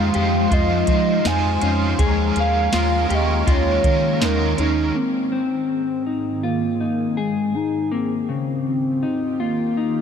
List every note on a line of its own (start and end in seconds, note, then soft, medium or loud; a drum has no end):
0.00 0.11 F2 loud
0.00 1.97 F3 medium
0.00 0.14 G#3 medium
0.00 4.92 G#3 medium
0.00 0.15 D#4 medium
0.00 1.97 D#4 medium
0.00 0.14 F4 medium
0.00 0.12 C5 medium
0.00 1.97 C5 medium
0.00 0.52 F5 loud
0.00 1.63 D#6 medium
0.13 0.48 F2 medium
0.13 0.51 D#4 medium
0.13 0.51 F4 medium
0.13 0.51 G4 medium
0.13 0.51 C5 medium
0.13 closed hi-hat soft
0.51 0.84 F2 medium
0.51 0.88 F3 medium
0.51 0.88 G#3 medium
0.51 0.89 D#4 medium
0.51 1.25 F4 medium
0.51 0.89 F4 medium
0.51 0.87 C5 loud
0.51 1.28 D#5 loud
0.51 kick loud
0.51 closed hi-hat medium
0.87 1.21 F3 loud
0.87 1.26 F4 medium
0.87 1.25 C5 medium
0.87 kick medium
0.87 closed hi-hat medium
0.92 1.25 D#4 soft
1.25 1.58 F2 loud
1.25 1.62 G#3 medium
1.25 1.62 D#4 medium
1.25 1.63 D#4 medium
1.25 1.63 F4 medium
1.25 1.60 C5 medium
1.25 2.33 G#5 medium
1.25 1.82 G#5 loud
1.25 snare loud
1.25 closed hi-hat medium
1.25 tambourine medium
1.62 1.95 F2 loud
1.62 1.99 C#4 medium
1.62 2.01 D#4 soft
1.62 2.00 F4 soft
1.62 1.99 C5 medium
1.62 closed hi-hat medium
1.99 2.32 D#2 loud
1.99 2.36 D#3 medium
1.99 4.93 D#3 medium
1.99 2.37 G#3 medium
1.99 4.93 A#3 medium
1.99 4.93 C#4 medium
1.99 2.37 C#4 medium
1.99 2.72 G#4 loud
1.99 2.36 G#4 loud
1.99 2.34 A#4 medium
1.99 kick loud
1.99 closed hi-hat medium
2.35 2.69 D#2 loud
2.35 2.73 C#4 soft
2.35 2.74 G#4 soft
2.35 2.73 A#4 medium
2.35 closed hi-hat soft
2.40 3.15 F5 loud
2.72 3.06 D#2 loud
2.72 3.10 G#3 medium
2.72 3.11 C#4 medium
2.72 3.09 F4 medium
2.72 3.10 G#4 medium
2.72 3.08 A#4 medium
2.72 5.29 C6 medium
2.72 snare loud
2.72 closed hi-hat medium
2.72 tambourine medium
3.09 3.43 D#2 loud
3.09 3.47 C#4 soft
3.09 3.47 G4 medium
3.09 3.47 G#4 soft
3.09 3.47 A#4 medium
3.09 closed hi-hat soft
3.14 3.53 D#5 loud
3.46 3.80 D#2 medium
3.46 3.84 D#3 medium
3.46 3.84 G#3 medium
3.46 3.85 C#4 medium
3.46 4.21 F4 medium
3.46 3.85 G#4 medium
3.46 3.83 A#4 medium
3.46 kick medium
3.46 closed hi-hat medium
3.51 4.26 C#5 loud
3.84 4.24 D#3 loud
3.84 4.21 C#4 soft
3.84 4.22 G#4 soft
3.84 4.21 A#4 medium
3.84 kick loud
3.84 closed hi-hat medium
4.20 4.54 D#2 loud
4.20 4.58 G#3 medium
4.20 4.59 C#4 medium
4.20 4.57 D#4 medium
4.20 4.58 G#4 medium
4.20 snare loud
4.20 closed hi-hat medium
4.20 tambourine medium
4.24 4.55 A#4 medium
4.24 4.59 A#4 medium
4.57 4.91 D#2 loud
4.57 4.95 C#4 medium
4.57 4.96 C#4 soft
4.57 4.98 D#4 medium
4.57 4.96 G#4 soft
4.57 4.95 A#4 medium
4.57 closed hi-hat medium
4.95 7.89 G#2 medium
4.95 10.01 D#3 medium
4.95 5.32 A#3 medium
4.95 7.89 C4 medium
4.95 6.45 C4 medium
4.95 7.89 G#4 medium
5.32 6.06 C4 medium
6.06 6.44 D#4 medium
6.43 6.80 A#3 medium
6.43 6.81 F4 medium
6.80 7.20 A#3 medium
6.80 7.18 D#4 medium
7.17 7.56 G#3 medium
7.17 7.92 G#4 medium
7.55 7.92 D#4 medium
7.91 10.01 D#2 medium
7.91 8.29 A#3 medium
7.91 9.41 C4 medium
7.91 10.01 F4 medium
7.91 10.01 G4 medium
8.29 9.03 C#3 medium
9.03 9.40 D#4 medium
9.40 10.01 A#3 medium
9.40 9.77 F4 medium
9.77 10.01 D#4 medium